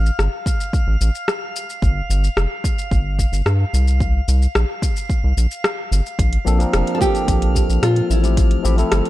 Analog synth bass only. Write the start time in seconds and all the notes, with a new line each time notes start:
Already playing: A1
0.19 G1
0.87 A1
1.01 A1
1.82 G1
2.10 G1
2.37 F1
2.91 G1
3.32 G1
3.46 G2
3.73 C2
4.28 C2
4.55 A#1
5.24 C2
5.37 A#1
5.92 G1
6.19 A#1
6.46 A#1
6.74 F1
7.28 A#1
7.69 A#1
7.83 A#2
8.10 A1
8.65 A1
8.92 G1